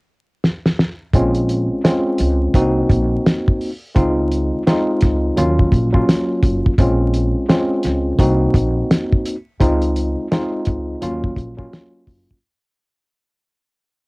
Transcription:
0.44 snare
0.66 snare
0.79 snare
1.13 A#1 G#3 C4 C#4 F4, kick, closed hi-hat
1.35 closed hi-hat
1.49 closed hi-hat
1.84 G#3 C4 C#4 F4, snare, closed hi-hat
2.18 C#2, closed hi-hat
2.54 C2 A#3 C4 D#4 F#4, kick, closed hi-hat
2.89 A#1, kick, closed hi-hat
3.26 snare, closed hi-hat
3.48 kick
3.61 open hi-hat
3.95 C#2 G#3 C4 D#4 F4, kick, closed hi-hat
4.32 closed hi-hat
4.66 G#3 C4 D#4 F4, snare, closed hi-hat
5.01 C#2, kick, snare, closed hi-hat
5.37 D#2 F#3 A#3 C#4 F4, closed hi-hat
5.59 kick
5.72 A#1, kick, closed hi-hat
5.93 F#3 A#3 C#4 F4, kick
6.09 snare, closed hi-hat
6.43 F#1, kick, closed hi-hat
6.66 kick
6.78 A#1 G#3 C4 C#4 F4, kick, closed hi-hat
7.14 closed hi-hat
7.48 G#3 C4 C#4 F4, snare, closed hi-hat
7.83 C#2, snare, closed hi-hat
8.19 C2 A#3 C4 D#4 F#4, kick, closed hi-hat
8.54 A#1, kick, closed hi-hat
8.91 snare, closed hi-hat
9.13 kick
9.26 closed hi-hat
9.60 C#2 G#3 C4 D#4 F4, kick, closed hi-hat
9.82 closed hi-hat
9.96 closed hi-hat
10.31 G#3 C4 D#4 F4, snare, closed hi-hat
10.65 C#2, kick, closed hi-hat
11.01 D#2 F#3 A#3 C#4 F4, closed hi-hat
11.24 kick
11.36 A#1, kick, closed hi-hat
11.57 F#3 A#3 C#4 F4, kick
11.73 snare, closed hi-hat
12.07 F#1, kick, open hi-hat
12.31 kick

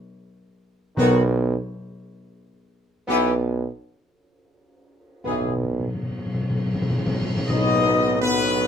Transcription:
0.96 B1 B2 D#3 B3 F#4
3.07 B1 E3 B3 G4
5.24 B1 B2 E3 B3 G#4
5.33 B2
5.41 B2
5.48 B2
5.56 B2
5.64 B2
5.71 B2
5.79 B2
5.87 B2
5.95 B2
6.03 B2
6.11 B2
6.18 B2
6.26 B2
6.34 B2
6.42 B2
6.50 B2
6.58 B2
6.66 B2
6.74 B2
6.82 B2
6.90 B2
6.98 B2
7.06 B2
7.14 B2
7.21 B2
7.29 B2
7.37 B2
7.48 B1 B2 F#3 B3 D#4 D#5, tam-tam
8.21 F#3 B3 B4

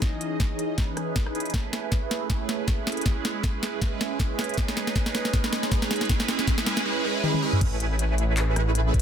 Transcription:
0.02 E3 C#4 D#4 G#4 D#5, kick, snare, closed hi-hat
0.21 closed hi-hat
0.40 kick, snare, closed hi-hat
0.59 closed hi-hat
0.78 E3 B4, kick, snare, closed hi-hat
0.97 cross-stick, closed hi-hat
1.16 kick, snare, closed hi-hat
1.26 cross-stick
1.35 E3 C#4 D#4 G#4 B4, closed hi-hat
1.40 closed hi-hat
1.46 closed hi-hat
1.50 A3, kick, closed hi-hat
1.54 snare, closed hi-hat
1.73 snare, closed hi-hat
1.92 kick, snare, closed hi-hat
2.11 snare, closed hi-hat
2.30 A3 C#4 E4 G#4 B4, kick, snare, closed hi-hat
2.49 snare, closed hi-hat
2.68 kick, snare, closed hi-hat
2.87 snare, closed hi-hat
2.92 closed hi-hat
2.97 closed hi-hat
3.01 closed hi-hat
3.06 G#3 C#4 E4 G#4 B4, kick, snare, closed hi-hat
3.25 snare, closed hi-hat
3.44 kick, snare, closed hi-hat
3.63 snare, closed hi-hat
3.82 kick, snare, closed hi-hat
4.01 snare, closed hi-hat
4.20 kick, snare, closed hi-hat
4.39 snare, closed hi-hat
4.44 closed hi-hat
4.49 closed hi-hat
4.54 G#3 C#4 D#4 G#4 B4, kick, closed hi-hat
4.58 snare, closed hi-hat
4.68 snare
4.77 snare, closed hi-hat
4.87 snare
4.95 G#3 C#4 D#4 G#4 B4, kick, snare, closed hi-hat
5.06 snare
5.15 snare, closed hi-hat
5.25 snare
5.33 G#3 C#4 D#4 G#4 B4, kick, snare, closed hi-hat
5.44 snare
5.53 snare, closed hi-hat
5.63 snare
5.71 G#3 C#4 D#4 G#4 B4, kick, snare, closed hi-hat
5.82 snare
5.91 snare, closed hi-hat
5.96 closed hi-hat
6.01 snare, closed hi-hat
6.05 closed hi-hat
6.09 G#3 E4 B4, kick, snare, closed hi-hat
6.20 snare
6.28 G#3 C#4 E4 G#4 B4, snare, closed hi-hat
6.39 snare
6.47 G#3 C#4 E4 G#4 B4, kick, snare, closed hi-hat
6.58 snare
6.66 G#3 C#4 E4 G#4 B4, snare, closed hi-hat
6.77 snare
6.85 G#3 C#4 E4 G#4 B4
7.04 G#3 C#4 E4 G#4 B4
7.23 G#3 C#4 E4 G#4 B4, high tom
7.34 high tom
7.42 G#3 C#4 E4 G#4 B4
7.53 mid tom
7.61 A1 A3 C#4 E4 G#4 B4, kick, closed hi-hat, crash
7.80 closed hi-hat
7.99 closed hi-hat
8.18 closed hi-hat
8.37 clap, closed hi-hat
8.56 A1 A3 C#4 E4 G#4 B4, cross-stick, closed hi-hat
8.75 closed hi-hat
8.94 kick, closed hi-hat

